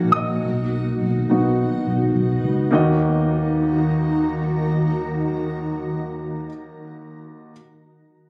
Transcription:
Already playing: A#1 A#3 D#4 F#4 G#4 A#4 F#5 G#5 A#5
0.12 A#1 D#6
0.16 D#5
0.44 B1 B3
1.01 B1
1.30 B1 B3 D#4 F#4
1.87 B1
2.15 B1
2.44 C#2
2.71 D#2 D#3 A#3 D#4 F#4 A#4 A#5
2.75 D#5

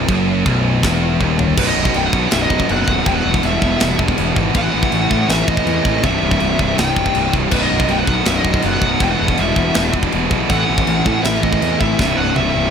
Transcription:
0.08 F#1 F#2, kick, crash
0.46 B0 B1, kick, crash
0.83 E1 E2, kick, snare, crash
1.20 D#1 D#2, kick
1.39 floor tom
1.57 B0 B1 F#2 B2 F#3 D#4 B4, kick, crash, china
1.66 B1 F#2 D#5
1.74 B0 B1 F#2
1.81 B1 F#2
1.85 B1 F#2, kick
1.94 B0 B1 F#2 G5, china
2.05 B1 F#2 F#5
2.13 B1 F#2 B2 F#3 D#4, kick
2.20 B1 F#2
2.28 B1 F#2, snare, china
2.32 B0 E5
2.36 B1 F#2
2.42 B1 F#2 D#5
2.50 B0 B1 F#2, kick
2.59 B1 F#2, kick
2.66 F#1 B1 F#2, china
2.70 B2 F#3 D#4 F#5
2.75 B1 F#2 F#5
2.82 B1 F#2
2.88 D#1 B1 F#2, kick
2.98 B1 F#2
3.06 E1 E2 B2 E3 G3 B3 E4 G5, kick, china
3.14 E2 B2 F#5
3.22 E1 E2 B2
3.30 E2 B2
3.34 E2, kick
3.39 B2, china
3.44 E1 E2 B2 E5
3.52 E2 B2
3.61 E1 E2 B2 E3 G3 B3 E4, kick
3.69 E2 B2
3.76 E2 B2, china
3.81 E1, snare
3.85 E2 B2
3.92 E2 B2
3.99 E1 E2 B2, kick
4.08 E2 B2, kick
4.16 E1 E2 B2 E3 G3, china
4.20 E2 B3 E4
4.24 B2
4.31 E2 B2
4.36 G#1 E2, kick
4.41 B2
4.47 E2 B2
4.54 A1 A2 E3 A3 C4 E4 A4 F#5, kick, china
4.62 A2 E3
4.70 A1 A2 E3
4.78 A2 E3
4.83 A2, kick
4.87 E3
4.92 A1 A2 E3, china
5.02 A2 E3
5.09 A2 E3 C4 E4 A4, kick
5.13 A2 E3 A3
5.17 A2 E3
5.25 A2 E3
5.29 A1 E3 E5, snare, china
5.33 A2
5.41 A2 E3
5.47 A1 A2 E3 D#5, kick
5.55 A2 E3, kick
5.64 E2 A2 E3 A3 C4, china
5.68 A2 E4 A4
5.73 E3
5.80 A2 E3
5.85 A1 A2 E3, kick
5.96 A2 E3
6.03 C1 C2 G2 C3 E3 E4 E5, kick, china
6.10 C2 G2
6.20 C1 C2 G2
6.27 C2 G2
6.31 C2 G2, kick
6.40 C1 C2 G2, china
6.50 C2 G2
6.58 C1 C2 G2 C3 E3 E4, kick
6.66 C2 G2
6.73 C2 G2
6.78 C1 C2 G2 G5, snare, china
6.90 C2 G2
6.96 C1 C2 G2, kick
7.05 C2 G2, kick
7.13 C1 C2 G2 C3 E3, china
7.18 C2 G2 E4
7.27 C2 G2
7.33 C1 C2 G2, kick
7.44 C2 G2
7.51 B0 B1 F#2 B2 F#3 D#4 B4, kick, china, crash
7.60 B1 F#2 D#5
7.68 B0 B1 F#2
7.75 B1 F#2
7.80 B1, kick
7.84 F#2
7.89 B0 B1 G5, china
7.93 F#2
7.99 B1 F#2 F#5
8.07 B1 F#2 B2 F#3 D#4, kick
8.15 B1 F#2
8.23 B0 B1 F#2, snare, china
8.28 B1 E5
8.32 F#2
8.37 B1 F#2 D#5
8.45 B0 B1 F#2, kick
8.54 B1 F#2, kick
8.62 F#1 B1 F#2 B2 F#3 D#4 F#5, china
8.69 B1 F#2
8.74 B1 F#2 F#5
8.82 B0, kick
8.86 B1 F#2
8.93 B1 F#2
9.00 E1 E2 B2 E3 G3 B3 E4 G5, kick, china
9.09 E2 B2 F#5
9.17 E2 B2
9.21 E1 E2
9.25 B2, kick
9.32 E2 B2
9.38 E1 E2 B2 E5, china
9.48 E2 B2
9.56 E1 E2 B2 E3 G3 B3 E4, kick
9.64 E2 B2
9.71 E2 B2, snare, china
9.76 E1 E2 B2
9.88 E2 B2
9.94 E1 E2 B2, kick
10.03 E2 B2, kick
10.11 E1 E2 B2 E3 G3 B3 E4, china
10.18 E2 B2
10.26 E2 B2
10.31 B1 E2 B2, kick
10.42 E2 B2
10.49 A1 A2 E3 A3 C4 E4 A4 F#5, kick, china
10.58 A2 E3
10.65 A2 E3
10.70 A1 A2
10.74 E3, kick
10.81 A2 E3
10.87 A1 A2 E3, china
10.97 A2 E3
11.05 A2 E3 A3 C4 E4 A4, kick
11.09 A2
11.13 A2 E3
11.21 A1 A2 E3 E5, china
11.26 A2 E3, snare
11.36 A2 E3
11.43 A1 A2 E3 D#5, kick
11.51 A2 E3, kick
11.61 E2 A2 E3 A3 C4 E4 A4, china
11.68 A2 E3
11.75 A2 E3
11.80 A1 E3 E5, kick
11.84 A2
11.92 A2 E3
11.99 C1 C2 G2 C3 E3 E4, kick, snare
12.06 C2 G2
12.15 C1 C2 G2 F#5
12.22 C2 G2
12.30 C2 G2
12.36 C1 C2 G2 E5, high tom
12.46 C2 G2
12.54 C1 C2 G2 C3 E3 E4
12.58 C2
12.63 G2

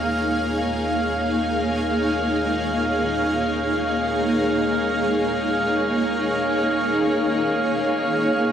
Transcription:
Already playing: D#2 A#3 D#4 G#4 C#5 F5 F6

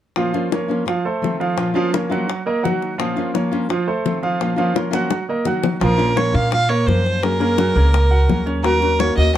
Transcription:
0.16 A#2 F3 A#3 C#4 F4 F5, high bongo
0.33 F3 A#3 C#4 F4, high bongo
0.51 F3 A#3 C#4 F4 A#4 C#5, high bongo
0.68 F3 A#3 C#4 F4, high bongo
0.85 F3 F4 F5, muted nylon-string guitar stroke, high bongo
1.05 A3 A4 C5
1.21 D#3 A3 C4 F4, high bongo, low bongo
1.40 F3 F4 F5, high bongo
1.57 A#2 F3 A#3 C#4 F4, high bongo
1.74 F3 A#3 C#4 F4 F5, high bongo
1.92 F3 A#3 C#4 F4 A#4 C#5, high bongo
2.10 F3 F#3 A#3 C#4 F4 F#4 F#5, high bongo
2.29 muted nylon-string guitar stroke, high bongo
2.46 A#3 A#4 D#5
2.63 D#3 F#3 A#3 D#4 F#4 F#5, high bongo, low bongo
2.82 high bongo
2.98 A#2 F3 A#3 C#4 F4 F5, high bongo
3.16 F3 A#3 C#4 F4, high bongo
3.34 F3 A#3 C#4 F4 A#4 C#5, high bongo
3.52 F3 A#3 C#4 F4, high bongo
3.69 F3 F4 F5, muted nylon-string guitar stroke, high bongo
3.87 A3 A4 C5
4.05 D#3 A3 C4 F4, high bongo, low bongo
4.23 F3 F4 F5, high bongo
4.40 A#2 F3 A#3 C#4 F4, high bongo
4.56 F3 A#3 C#4 F4 F5, high bongo
4.74 F3 A#3 C#4 F4 A#4 C#5, high bongo
4.91 F3 F#3 A#3 C#4 F4 F#4 F#5, high bongo
5.10 muted nylon-string guitar stroke, high bongo
5.29 A#3 A#4 D#5
5.45 D#3 F#3 A#3 D#4 F#4 F#5, low bongo
5.63 low bongo
5.80 A#1 F3 A#3 C#4 F4 A#4, high bongo
5.98 A#3 C#4 F4, high bongo
6.16 F3 A#3 C#4 F4 A#4 C#5, high bongo
6.34 A#2 A#3 C#4 F4 F5, high bongo
6.52 F4 F5, muted nylon-string guitar stroke, high bongo
6.69 A#3 A#4 C#5
6.87 F#2 F3 A#3 C#4 F4 C5, high bongo, low bongo
7.06 high bongo
7.22 F#3 A#3 C#4 G#4 A#4, high bongo
7.39 A#3 C#4 G#4 A#4, high bongo
7.57 F#3 A#3 C#4 F#4 G#4, high bongo
7.75 C#2 A#3 C#4 G#4 A#4, high bongo
7.93 muted nylon-string guitar stroke, high bongo
8.11 F#4 F#5
8.28 D#2 F#3 A#3 C#4 G#4, high bongo, low bongo
8.46 C#4 C#5, high bongo
8.63 D#3 F#3 A#3 C#4 F#4 A#4, high bongo
8.80 A#3 C#4 F#4, high bongo
8.99 D#3 A#3 C#4 F#4 A#4 C#5, high bongo
9.17 D#2 A#3 C#4 F#4 D#5, high bongo
9.34 F#4 F#5, muted nylon-string guitar stroke

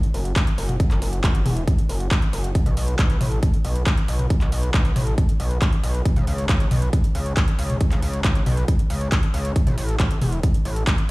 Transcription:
0.03 closed hi-hat
0.14 F#1, open hi-hat
0.25 closed hi-hat
0.36 kick, clap, closed hi-hat
0.47 closed hi-hat
0.58 F#1, open hi-hat
0.69 closed hi-hat, mid tom
0.80 kick, closed hi-hat
0.91 F#1, clap, closed hi-hat
1.02 F#1, open hi-hat
1.13 closed hi-hat
1.24 F#1, kick, clap, closed hi-hat
1.35 closed hi-hat
1.45 E1, open hi-hat, mid tom
1.57 closed hi-hat
1.68 kick, closed hi-hat
1.78 closed hi-hat
1.89 F#1, open hi-hat
2.00 closed hi-hat
2.11 kick, clap, closed hi-hat
2.22 closed hi-hat
2.33 F#1, open hi-hat
2.44 closed hi-hat
2.55 kick, closed hi-hat
2.66 B1, closed hi-hat, mid tom
2.77 B1, open hi-hat
2.88 closed hi-hat
2.99 B1, kick, clap, closed hi-hat
3.10 closed hi-hat
3.21 A1, open hi-hat, mid tom
3.32 closed hi-hat
3.43 kick, closed hi-hat
3.54 closed hi-hat
3.65 B1, open hi-hat
3.76 closed hi-hat
3.86 kick, clap, closed hi-hat
3.97 closed hi-hat
4.08 B1, open hi-hat
4.19 closed hi-hat, mid tom
4.30 kick, closed hi-hat
4.41 B1, clap, closed hi-hat
4.52 B1, open hi-hat
4.63 closed hi-hat
4.74 B1, kick, clap, closed hi-hat
4.85 closed hi-hat
4.96 A1, open hi-hat, mid tom
5.07 closed hi-hat
5.18 kick, closed hi-hat
5.29 closed hi-hat
5.40 B1, open hi-hat
5.51 closed hi-hat
5.62 kick, clap, closed hi-hat
5.73 closed hi-hat
5.84 B1, open hi-hat
5.95 closed hi-hat
6.05 kick, closed hi-hat
6.16 C#2, closed hi-hat, mid tom
6.27 C#2, open hi-hat
6.38 closed hi-hat
6.49 C#2, kick, clap, closed hi-hat
6.60 closed hi-hat
6.71 B1, open hi-hat, mid tom
6.82 closed hi-hat
6.93 kick, closed hi-hat
7.04 closed hi-hat
7.15 C#2, open hi-hat
7.26 closed hi-hat
7.37 kick, clap, closed hi-hat
7.48 closed hi-hat
7.59 C#2, open hi-hat
7.70 closed hi-hat, mid tom
7.81 kick, closed hi-hat
7.91 C#2, clap, closed hi-hat
8.02 C#2, open hi-hat
8.13 closed hi-hat
8.24 C#2, kick, clap, closed hi-hat
8.35 closed hi-hat
8.46 B1, open hi-hat, mid tom
8.57 closed hi-hat
8.68 kick, closed hi-hat
8.79 closed hi-hat
8.90 C#2, open hi-hat
9.01 closed hi-hat
9.12 kick, clap, closed hi-hat
9.23 closed hi-hat
9.34 C#2, open hi-hat
9.45 closed hi-hat
9.56 kick, closed hi-hat
9.67 A1, closed hi-hat, mid tom
9.78 A1, open hi-hat
9.89 closed hi-hat
10.00 A1, kick, clap, closed hi-hat
10.11 closed hi-hat
10.21 E1, open hi-hat, mid tom
10.32 closed hi-hat
10.43 kick, closed hi-hat
10.54 closed hi-hat
10.65 A1, open hi-hat
10.76 closed hi-hat
10.87 kick, clap, closed hi-hat
10.98 closed hi-hat

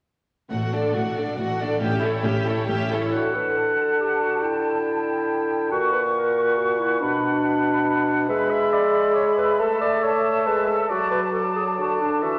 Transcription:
0.50 A1 A2 A3 F#4 F#5
0.72 D4 A4 D5
0.94 A1 A2 A3 F#4 F#5
1.16 D4 A4 D5
1.38 A1 A2 A3 F#4 F#5
1.59 D4 A4 D5
1.81 A1 A2 C#4 G4 E5
2.03 E4 A4 C#5
2.24 A1 A2 C#4 G4 E5
2.46 E4 A4 C#5
2.68 A1 A2 C#4 G4 E5
2.91 E4 A4 C#5
3.13 D3 F#4 F#5 A5
3.35 B4
3.57 A4
4.00 G4
4.21 F#4
4.42 E4 G5
5.71 A#2 F#4 F#5 C#6
5.92 B4
6.15 A#4
6.57 F#4
6.79 E4
7.00 B2 D4 B5
8.28 G#3 B4 E5 B5
8.50 E5
8.72 D5 E5 B5
9.15 C#5
9.37 B4
9.59 A3 A4 E5 A5
9.81 D5
10.03 C#5 E5 A5
10.46 G#3 B4
10.68 A4
10.89 F#3 F#4 D5 A5
11.11 B4
11.33 A4 D5 A5
11.55 G#4
11.77 D3 F#4 D5 A5
12.01 D4
12.22 E3 F#4 E5 A5

